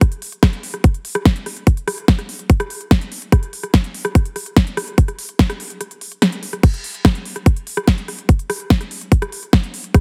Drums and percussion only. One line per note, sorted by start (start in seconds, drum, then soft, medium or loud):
0.01 kick loud
0.01 cross-stick soft
0.01 closed hi-hat medium
0.12 closed hi-hat soft
0.22 open hi-hat loud
0.32 closed hi-hat soft
0.43 kick loud
0.43 cross-stick medium
0.43 snare loud
0.43 closed hi-hat loud
0.53 closed hi-hat soft
0.63 open hi-hat medium
0.74 cross-stick soft
0.74 closed hi-hat soft
0.84 kick loud
0.84 closed hi-hat medium
0.94 closed hi-hat soft
1.05 open hi-hat loud
1.15 cross-stick medium
1.15 closed hi-hat soft
1.25 kick loud
1.25 snare loud
1.25 closed hi-hat medium
1.36 closed hi-hat soft
1.46 cross-stick soft
1.46 open hi-hat medium
1.56 closed hi-hat soft
1.67 kick loud
1.67 closed hi-hat medium
1.77 closed hi-hat soft
1.88 cross-stick medium
1.88 open hi-hat loud
1.98 closed hi-hat soft
2.08 kick loud
2.08 snare loud
2.08 closed hi-hat medium
2.19 cross-stick soft
2.19 closed hi-hat soft
2.29 open hi-hat medium
2.39 closed hi-hat soft
2.50 kick loud
2.50 closed hi-hat medium
2.60 cross-stick medium
2.60 closed hi-hat soft
2.70 open hi-hat loud
2.81 closed hi-hat soft
2.91 kick loud
2.91 cross-stick soft
2.91 snare loud
2.91 closed hi-hat medium
3.01 closed hi-hat soft
3.12 open hi-hat medium
3.22 closed hi-hat soft
3.32 kick loud
3.32 cross-stick medium
3.32 closed hi-hat medium
3.43 closed hi-hat soft
3.53 open hi-hat loud
3.63 cross-stick soft
3.63 closed hi-hat soft
3.74 kick loud
3.74 snare loud
3.74 closed hi-hat loud
3.84 closed hi-hat soft
3.94 open hi-hat medium
4.05 cross-stick medium
4.05 closed hi-hat soft
4.15 kick loud
4.15 closed hi-hat medium
4.25 closed hi-hat soft
4.36 cross-stick soft
4.36 open hi-hat loud
4.46 closed hi-hat soft
4.57 kick loud
4.57 snare loud
4.57 closed hi-hat loud
4.67 closed hi-hat soft
4.77 cross-stick medium
4.77 open hi-hat medium
4.88 closed hi-hat soft
4.98 kick loud
4.98 closed hi-hat medium
5.08 cross-stick soft
5.08 closed hi-hat soft
5.19 open hi-hat loud
5.29 closed hi-hat soft
5.39 kick loud
5.39 snare loud
5.39 closed hi-hat loud
5.50 cross-stick medium
5.50 closed hi-hat soft
5.60 open hi-hat medium
5.70 closed hi-hat soft
5.81 cross-stick soft
5.81 closed hi-hat loud
5.91 closed hi-hat soft
6.01 open hi-hat loud
6.12 closed hi-hat soft
6.22 cross-stick medium
6.22 snare loud
6.22 closed hi-hat loud
6.32 closed hi-hat soft
6.43 open hi-hat medium
6.53 cross-stick soft
6.53 closed hi-hat soft
6.63 kick loud
6.63 cross-stick soft
6.63 closed hi-hat loud
6.63 crash medium
6.74 closed hi-hat soft
6.84 open hi-hat loud
6.94 closed hi-hat soft
7.05 kick loud
7.05 cross-stick medium
7.05 snare loud
7.05 closed hi-hat loud
7.15 closed hi-hat soft
7.25 open hi-hat medium
7.36 cross-stick soft
7.36 closed hi-hat soft
7.46 kick loud
7.46 closed hi-hat loud
7.57 closed hi-hat soft
7.67 open hi-hat loud
7.77 cross-stick medium
7.77 closed hi-hat soft
7.88 kick loud
7.88 snare loud
7.88 closed hi-hat loud
7.98 closed hi-hat soft
8.08 cross-stick soft
8.08 open hi-hat medium
8.19 closed hi-hat soft
8.29 kick loud
8.29 closed hi-hat medium
8.39 closed hi-hat soft
8.50 cross-stick medium
8.50 open hi-hat loud
8.60 closed hi-hat soft
8.70 kick loud
8.70 snare loud
8.70 closed hi-hat loud
8.81 cross-stick soft
8.81 closed hi-hat soft
8.91 open hi-hat loud
9.01 closed hi-hat soft
9.12 kick loud
9.12 closed hi-hat medium
9.22 cross-stick medium
9.22 closed hi-hat soft
9.32 open hi-hat loud
9.43 closed hi-hat soft
9.53 kick loud
9.53 cross-stick soft
9.53 snare loud
9.53 closed hi-hat loud
9.63 closed hi-hat soft
9.74 open hi-hat loud
9.84 closed hi-hat soft
9.94 kick loud
9.94 cross-stick medium
9.94 closed hi-hat medium